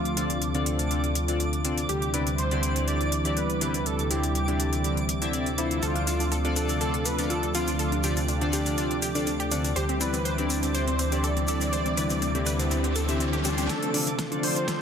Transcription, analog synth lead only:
0.00 0.66 F4 medium
1.89 2.12 G4 medium
2.14 2.25 B4 medium
2.38 2.89 C5 loud
2.88 3.38 D5 loud
3.37 3.88 B4 loud
3.86 4.12 A4 loud
4.11 5.09 G4 medium
5.58 5.84 E4 loud
5.83 6.32 F4 loud
6.56 6.79 A4 loud
6.81 7.07 A4 loud
7.06 7.30 B4 loud
7.30 7.53 A4 loud
7.55 8.49 F4 medium
9.76 9.99 G4 medium
10.01 10.46 B4 loud
10.74 11.25 C5 loud
11.24 11.48 D5 loud
11.48 12.92 D5 loud
13.45 13.71 G4 loud
13.70 14.19 A4 loud
14.44 14.66 C5 medium
14.68 14.82 C5 loud

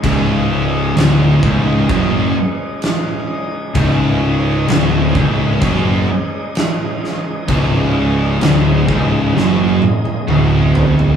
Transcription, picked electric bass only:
0.04 0.93 C#1 medium
0.97 1.40 D1 loud
1.43 1.86 C#1 medium
1.89 2.33 F#1 loud
3.75 4.65 C#1 loud
4.68 5.12 D1 loud
5.15 5.59 C#1 loud
5.62 6.05 F#1 medium
7.48 8.38 C#1 loud
8.42 8.85 D1 loud
8.88 9.32 C#1 medium
9.35 9.79 F#1 loud
10.29 11.16 D1 loud

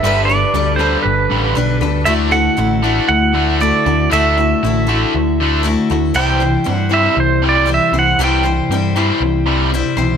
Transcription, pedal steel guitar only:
0.00 0.25 E5 medium
0.25 0.80 D5 medium
0.76 1.02 C5 medium
1.03 1.77 B4 medium
2.05 2.13 E5 medium
2.32 3.07 F#5 loud
3.08 3.57 F#5 loud
3.61 4.12 D5 medium
4.13 5.61 E5 medium
6.16 6.70 G5 loud
6.70 6.93 F#5 loud
6.94 7.19 E5 medium
7.20 7.43 C5 medium
7.49 7.70 D5 medium
7.74 7.97 E5 medium
7.99 8.22 F#5 medium
8.24 9.71 G5 medium

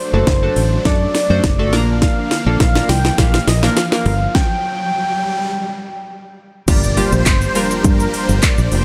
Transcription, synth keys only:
0.13 0.26 A3 medium
0.13 0.26 D4 medium
0.13 0.26 F#4 medium
0.13 0.26 A4 medium
0.42 0.62 A3 medium
0.42 0.62 D4 medium
0.42 0.62 F#4 medium
0.42 0.62 A4 medium
0.85 1.06 A3 medium
0.85 1.06 D4 medium
0.85 1.06 F#4 medium
0.85 1.06 A4 medium
1.30 1.42 A3 medium
1.30 1.42 D4 medium
1.30 1.42 F#4 medium
1.30 1.43 C5 medium
1.59 1.73 A3 medium
1.59 1.72 D4 medium
1.59 1.73 F#4 medium
1.59 1.73 A4 loud
1.73 2.31 A#3 loud
1.73 2.31 D4 medium
1.73 2.31 F4 medium
1.73 2.31 A#4 loud
2.46 2.59 A#3 medium
2.46 2.59 D4 medium
2.46 2.59 F4 medium
2.46 2.59 A4 medium
2.75 2.95 A#3 medium
2.75 2.95 D4 medium
2.75 2.95 F4 medium
2.75 2.95 A#4 medium
3.18 3.39 A#3 medium
3.18 3.39 D4 medium
3.18 3.39 F4 medium
3.18 3.39 G4 medium
3.63 3.75 A#3 medium
3.63 3.75 D4 medium
3.63 3.75 F4 medium
3.63 3.76 A#4 medium
3.92 4.11 A#3 medium
3.92 4.11 D4 medium
3.92 4.11 F4 medium
3.92 4.12 A#4 medium
6.68 6.82 G3 medium
6.68 6.82 A#3 medium
6.68 6.82 D4 medium
6.68 6.82 F4 medium
6.68 6.82 G4 medium
6.97 7.24 G3 medium
6.97 7.24 A#3 medium
6.97 7.24 D4 medium
6.97 7.24 F4 medium
6.97 7.24 G4 medium
7.55 8.08 G3 medium
7.55 8.08 A#3 medium
7.55 8.08 D4 medium
7.55 8.09 F4 medium
7.55 8.09 A#4 medium

